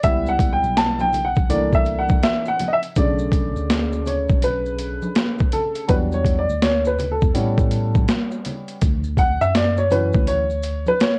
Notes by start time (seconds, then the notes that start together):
0.03 C#2 G3 B3 E4 E5, kick, closed hi-hat, maracas
0.26 F#5, maracas
0.39 kick, closed hi-hat, maracas
0.53 G5
0.63 B1, maracas
0.77 A5, snare, closed hi-hat, maracas
0.99 G5, high conga, maracas
1.13 closed hi-hat, high conga, low conga, maracas
1.25 F#5
1.35 C#2, kick, high conga, maracas
1.49 C2 E3 A3 A#3 D4 D5, closed hi-hat, maracas
1.72 E5, kick, maracas
1.85 closed hi-hat, maracas
1.98 F#5
2.09 kick, high conga, maracas
2.23 E5, snare, closed hi-hat, maracas
2.45 F#5, maracas
2.60 closed hi-hat, high conga, low conga, maracas
2.68 D#5
2.73 E5
2.83 closed hi-hat, maracas
2.96 B1 C#3 D3 A3 D5, kick, closed hi-hat, maracas
3.19 maracas
3.32 kick, closed hi-hat, maracas
3.56 D2, maracas
3.70 snare, closed hi-hat, maracas
3.92 maracas
4.06 C#5, closed hi-hat, low conga, maracas
4.29 B1, kick, maracas
4.42 B4, closed hi-hat, maracas
4.66 maracas
4.78 closed hi-hat, maracas
5.02 high conga, maracas
5.15 snare, closed hi-hat, maracas
5.38 kick, maracas
5.52 A4, closed hi-hat, low conga, maracas
5.75 closed hi-hat, maracas
5.88 E2 F#3 G3 D4 B4, kick, closed hi-hat, maracas
6.12 C#5, maracas
6.24 kick, closed hi-hat, maracas
6.39 D5
6.49 D2, maracas
6.62 C#5, snare, closed hi-hat, maracas
6.85 B4, maracas
6.99 closed hi-hat, low conga, maracas
7.12 A4
7.21 E2, kick, maracas
7.34 A2 G3 B3 C#4, closed hi-hat, maracas
7.58 kick, maracas
7.71 closed hi-hat, maracas
7.95 kick, high conga, maracas
8.08 snare, closed hi-hat, maracas
8.31 maracas
8.45 closed hi-hat, low conga, maracas
8.68 closed hi-hat, maracas
8.81 D2, kick, closed hi-hat, maracas
9.04 maracas
9.17 F#5, kick, closed hi-hat, maracas
9.41 F#2 E5, maracas
9.55 D5, snare, closed hi-hat, maracas
9.77 C#5, maracas
9.91 E3 F#3 C#4 B4, closed hi-hat, low conga, maracas
10.13 D2, kick, maracas
10.27 C#5, closed hi-hat, maracas
10.50 maracas
10.63 closed hi-hat, maracas
10.86 B4, high conga, maracas
11.00 C#5, snare, closed hi-hat, maracas